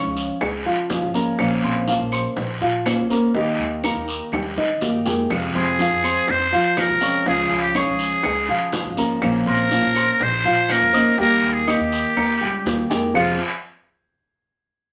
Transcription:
Already playing: F3 G#3 C#4 F4 C#5 C#6
0.04 C#2
0.16 high bongo, short guiro
0.40 C#2 G#3 G#4 G#5, muted nylon-string guitar stroke, high bongo, long guiro, claves
0.65 C#3 F3 F4 F5, high bongo
0.89 F3 G#3 C#4 F4, high bongo, low bongo, short guiro
1.01 G#1
1.14 F3 G#3 A#3 C#4 F4 A#4 A#5, high bongo, short guiro
1.38 A#1 F3 A#3 C#4 F4 C5, high bongo, long guiro, claves
1.63 A#1 C4 C5 C6
1.87 F3 A#3 C#4 F4 C5 F5, high bongo, short guiro
1.99 A#1
2.12 C5 C6, short guiro, claves
2.36 A#1, muted nylon-string guitar stroke, high bongo, long guiro
2.61 A#2 F3 F4 F5
2.85 A#3 C#4 F4 C5, high bongo, low bongo, short guiro, claves
2.97 C#2
3.10 A#3 C#4 F4 A#4 C5 A#5, short guiro
3.34 D#2 D#3 A#3 D#4 G4 D#5, high bongo, long guiro
3.59 D#2
3.83 D#3 A#3 D#4 G4 A#4 A#5, high bongo, short guiro, claves
3.95 D#2
4.08 high bongo, short guiro
4.32 D#2 G3 G4 G5, muted nylon-string guitar stroke, high bongo, long guiro, claves
4.56 D#3 D#4 D#5, high bongo
4.81 G2 D#3 A#3 D#4 G4, low bongo, short guiro
5.05 F2 G#3 A#3 D#4 G4 G#4 G#5, low bongo, short guiro
5.30 F2 C3 F3 G#3 C4 F4, high bongo, long guiro, claves
5.55 F2 C4 G#4 C5 C6
5.79 F3 G#3 C4 F4 F5, high bongo, short guiro
5.91 F2
6.03 C4 C5 C6, short guiro, claves
6.28 F2 C5, muted nylon-string guitar stroke, high bongo, long guiro
6.52 F3 F4 F5
6.77 F3 G#3 C4 F4 A#4, high bongo, low bongo, short guiro, claves
6.89 C2
7.01 F3 G#3 C4 C#4 F4 C#5 C#6, short guiro
7.25 C#2 C#3 F3 G#3 C#4 F4 G#4 F5, high bongo, long guiro
7.50 C#2
7.61 G4
7.74 F3 G#3 C#4 F4 G#4 C#5 C#6, high bongo, short guiro, claves
7.87 C#2
7.99 high bongo, short guiro
8.23 C#2 G#3 G#4 G#5, muted nylon-string guitar stroke, high bongo, long guiro, claves
8.48 C#3 F3 F4 F5, high bongo
8.72 F3 G#3 C#4 F4, high bongo, low bongo, short guiro
8.85 G#1
8.97 F3 G#3 A#3 C#4 F4 A#4 A#5, short guiro
9.21 A#1 F3 A#3 C#4 F4 C5, high bongo, long guiro, claves
9.46 A#1 C4 A#4 C5 C6
9.70 F3 A#3 C#4 F4 C5 F5, high bongo, short guiro
9.83 A#1
9.95 C5 C6, short guiro, claves
10.20 A#1 C5, muted nylon-string guitar stroke, high bongo, long guiro
10.44 A#2 F3 F4 F5
10.68 A#3 C#4 F4 A#4 C5, high bongo, low bongo, short guiro, claves
10.81 F2
10.93 A#3 C#4 D#4 F4 C5 D#5 D#6, short guiro
11.17 D#2 D#3 G3 A#3 D#4 G4 A#4 G5, high bongo, long guiro
11.42 D#2
11.53 G#4
11.66 D#3 A#3 D#4 G4 D#5 D#6, high bongo, short guiro, claves
11.79 D#2
11.92 high bongo, short guiro
12.16 D#2 A#3 A#4 A#5, muted nylon-string guitar stroke, high bongo, long guiro, claves
12.40 C#2 G3 G4 G5, high bongo
12.65 D#2 D#3 A#3 D#4 G4, high bongo, low bongo, short guiro
12.90 F2 G#3 A#3 D#4 G4 G#4 G#5, high bongo, short guiro
13.14 F1 F2 C3 F3 G#3 C4 F4 G#4 C5 F5, low bongo, long guiro, claves

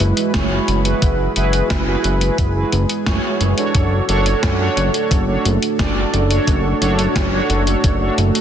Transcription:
Already playing: G#3 E4 F#4 B4
0.00 F#1, closed hi-hat
0.17 closed hi-hat
0.34 F#1 E4 F#4 G#4 C#5, kick, snare, closed hi-hat
0.68 F#1, closed hi-hat
0.85 E4 F#4 G#4 B4, closed hi-hat
1.02 F#1 G#4, kick, closed hi-hat
1.36 F#1 E4 F#4 G#4 B4, closed hi-hat
1.53 closed hi-hat
1.70 F#1, kick, snare, closed hi-hat
1.87 E4 F#4 G#4 B4
2.04 F#1, closed hi-hat
2.21 E4 F#4 G#4 B4, closed hi-hat
2.38 F#1, kick, closed hi-hat
2.56 E4 F#4 G#4 B4
2.72 F#1, closed hi-hat
2.89 closed hi-hat
3.06 F#1 E4 F#4 G#4 C#5, kick, snare, closed hi-hat
3.41 F#1, closed hi-hat
3.58 D4 F#4 A4 C#5, closed hi-hat
3.75 F#1 A3 D4 F#4 A4, kick, closed hi-hat
4.09 F#1 D4 F#4 A4 C#5, closed hi-hat
4.26 closed hi-hat
4.43 F#2, kick, snare, closed hi-hat
4.60 D4 F#4 A4 C#5
4.77 F#1, closed hi-hat
4.94 D4 F#4 A4 C#5, closed hi-hat
5.11 F#1, kick, closed hi-hat
5.28 D4 F#4 A4 C#5
5.45 F#1, closed hi-hat
5.63 closed hi-hat
5.79 F#1 D4 F#4 A4 D5, kick, snare, closed hi-hat
6.13 F#1, closed hi-hat
6.30 D4 F#4 A4 C#5, closed hi-hat
6.47 F#1, kick, closed hi-hat
6.81 F#1 D4 F#4 A4 C#5, closed hi-hat
6.99 closed hi-hat
7.16 F#1, kick, snare, closed hi-hat
7.32 D4 F#4 A4 C#5
7.50 F#1, closed hi-hat
7.67 D4 F#4 A4 C#5, closed hi-hat
7.84 F#1, kick, closed hi-hat
8.01 D4 F#4 A4 C#5
8.18 F#1, closed hi-hat
8.35 closed hi-hat

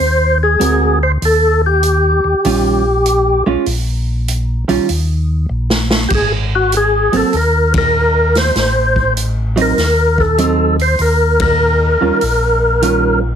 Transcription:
Already playing: C5
0.00 D#2, open hi-hat
0.43 G#4
0.60 D2 G#3 C4 F#4 A#4, closed hi-hat
1.03 C5
1.22 D#2 A4, open hi-hat
1.66 G4
1.83 closed hi-hat
2.24 D#2
2.45 A#1 D#3 G3 C#4 F4, open hi-hat
3.06 closed hi-hat
3.46 A#1 G#3 C#4 F4
3.66 A#1, open hi-hat
4.28 closed hi-hat
4.68 A#1 D#3 G3 C#4 F4, open hi-hat
4.89 D#2, open hi-hat
5.49 A#1
5.70 snare
5.90 snare
6.09 G#1 G4, kick, crash
6.14 G#4
6.55 F#4
6.72 closed hi-hat
6.77 G#4
7.12 G#1 F#3 A#3 C4, open hi-hat
7.17 A4
7.33 D#2 A#4, open hi-hat
7.74 A#4, kick, ride
8.35 C5, snare, open hi-hat
8.55 A1, snare, open hi-hat
8.96 kick
9.17 closed hi-hat
9.56 F#3 C4 D#4, open hi-hat
9.62 A#4
9.77 D#2, snare, open hi-hat
10.18 A4, kick
10.38 F#3 C4 D#4, closed hi-hat
10.79 C5, open hi-hat
10.99 D#2 A#4, open hi-hat
11.40 A#4, kick, ride
12.01 D#2 D#3 G3 C#4 F4
12.21 A#1, open hi-hat
12.82 D#3 G3 C#4 F4, closed hi-hat

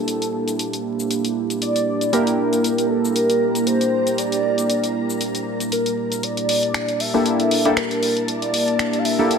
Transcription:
Already playing: A#3 D4 E4 G4 A4 E5 A5
0.08 closed hi-hat, shaker
0.22 closed hi-hat, shaker
0.48 closed hi-hat, shaker
0.59 closed hi-hat, shaker
0.73 closed hi-hat, shaker
1.00 shaker
1.11 closed hi-hat, shaker
1.25 closed hi-hat, shaker
1.50 closed hi-hat, shaker
1.62 D5, closed hi-hat, shaker
1.76 closed hi-hat, shaker
2.01 closed hi-hat, shaker
2.12 A#3 D4 E4 G4 A#4 G5 A#5, closed hi-hat, shaker
2.27 closed hi-hat, shaker
2.53 closed hi-hat, shaker
2.57 D5
2.64 closed hi-hat, shaker
2.78 closed hi-hat, shaker
2.90 A4
3.05 shaker
3.15 A#4, closed hi-hat, shaker
3.30 closed hi-hat, shaker
3.55 closed hi-hat, shaker
3.67 C5, closed hi-hat, shaker
3.81 closed hi-hat, shaker
4.07 closed hi-hat, shaker
4.18 D5, closed hi-hat, shaker
4.32 closed hi-hat, shaker
4.58 closed hi-hat, shaker
4.70 closed hi-hat, shaker
4.84 closed hi-hat, shaker
5.10 shaker
5.21 closed hi-hat, shaker
5.35 closed hi-hat, shaker
5.60 closed hi-hat, shaker
5.72 A#4, closed hi-hat, shaker
5.86 closed hi-hat, shaker
6.12 closed hi-hat, shaker
6.23 A#3 D4 E4 G4 A#4 D5 A5, closed hi-hat
6.37 closed hi-hat
6.49 open hi-hat
6.62 E5, closed hi-hat
6.74 finger snap, closed hi-hat
6.88 closed hi-hat
6.97 E5 A5, open hi-hat
7.14 A#3 D4 E4 G4 A4
7.26 closed hi-hat
7.40 closed hi-hat
7.51 open hi-hat
7.65 A#3 D4 E4 G4 A4, closed hi-hat
7.77 A#4, finger snap, closed hi-hat
7.91 closed hi-hat
8.03 open hi-hat
8.17 closed hi-hat
8.28 D5, closed hi-hat
8.42 closed hi-hat
8.54 open hi-hat
8.68 closed hi-hat
8.79 finger snap, closed hi-hat
8.93 closed hi-hat
8.99 F5
9.05 E5, open hi-hat
9.19 A#3 D4 E4 G4 A4
9.31 closed hi-hat

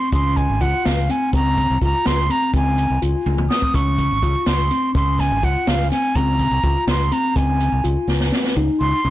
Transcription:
Already playing: C4 C6
0.12 C#2 C#4 C6, kick, closed hi-hat
0.37 G#5, kick, closed hi-hat
0.50 G#1
0.61 C#2 F4 F#5, kick, closed hi-hat
0.85 C#2 F5, snare, closed hi-hat
1.09 C4 G#5, closed hi-hat
1.33 C#2 C4 A#5, kick, closed hi-hat
1.57 kick, closed hi-hat
1.70 C2
1.82 C#2 F4 A#5, kick, closed hi-hat
2.06 C#2 C6, snare, closed hi-hat
2.29 C4 A#5, closed hi-hat
2.53 C#2 C4 G#5, kick, closed hi-hat
2.78 closed hi-hat
2.90 C2
3.02 C#2 F4, closed hi-hat
3.26 C#2, high tom
3.38 mid tom
3.50 C4 D#6, snare
3.62 kick
3.74 C#2 C#4 C#6, kick, closed hi-hat
3.98 kick, closed hi-hat
4.11 G#1
4.22 C#2 F4, kick, closed hi-hat
4.46 C#2 C6, snare, closed hi-hat
4.71 C4, closed hi-hat
4.95 C#2 C#4 C6, kick, closed hi-hat
5.19 G#5, kick, snare, closed hi-hat
5.31 G#1
5.43 C#2 F4 F#5, kick, closed hi-hat
5.67 C#2 F5, snare, closed hi-hat
5.91 C4 G#5, snare, closed hi-hat
6.15 C#2 C4 A#5, kick, closed hi-hat
6.39 kick, closed hi-hat
6.51 C2
6.63 C#2 F4, kick, closed hi-hat
6.87 C#2 C6, snare, closed hi-hat
7.12 C4 A#5, closed hi-hat
7.36 C#2 C4 G#5, kick, closed hi-hat
7.60 closed hi-hat
7.72 C2
7.84 C#2 F4, closed hi-hat
8.08 C#2, snare
8.21 snare
8.32 C4, snare
8.44 snare
8.57 C#2 D#4
8.80 C#2 C6
9.04 C2 C#4

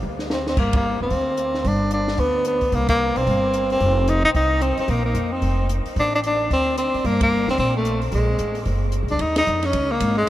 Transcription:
0.03 D2
0.19 snare
0.30 C4, snare
0.47 C4, snare
0.57 G1 A#3, kick, crash
0.73 A#3, kick, ride
1.01 F1 C4
1.10 D2, kick, open hi-hat
1.37 closed hi-hat
1.54 snare
1.64 G1 D4, kick, open hi-hat
1.91 D4, closed hi-hat
2.08 snare
2.18 D2 B3, kick, open hi-hat
2.45 B3, closed hi-hat
2.61 kick, open hi-hat
2.72 C2 A#3, kick, open hi-hat
2.89 A#3, kick, ride
3.16 B1 C4, open hi-hat
3.27 G1, kick, open hi-hat
3.54 closed hi-hat
3.70 C4, open hi-hat
3.80 F1, kick, open hi-hat
4.08 D#4, closed hi-hat
4.24 C2 D#4
4.35 C2 D#4, kick, open hi-hat
4.61 C4, closed hi-hat
4.77 C4, muted upright bass stroke, open hi-hat
4.88 A#1 A#3, kick, open hi-hat
5.05 A#3
5.14 F2, closed hi-hat
5.32 C4
5.42 F1, kick, open hi-hat
5.69 closed hi-hat
5.85 muted upright bass stroke, open hi-hat
5.96 A1 D4, kick, open hi-hat
6.15 D4
6.24 D4, closed hi-hat
6.50 D2 C4, kick, open hi-hat
6.78 C4, closed hi-hat
6.94 muted upright bass stroke, open hi-hat
7.04 G1 A#3, kick, open hi-hat
7.21 A#3, kick, ride
7.48 D2 C4, snare
7.58 A#1 C4, kick, open hi-hat
7.77 A3
7.85 closed hi-hat
8.02 open hi-hat
8.12 A#1 G#3, kick, open hi-hat
8.39 A1, closed hi-hat
8.55 open hi-hat
8.65 F#1, kick, open hi-hat
8.92 closed hi-hat
9.03 A#1
9.08 C#2 D4, open hi-hat
9.19 D#2 D#4, kick, ride
9.36 D#4, snare, ride
9.46 F2, hi-hat pedal
9.63 C#4, snare, ride
9.73 C#2, kick, ride
9.91 A#3
10.00 G#1, kick, hi-hat pedal, ride
10.17 G#3

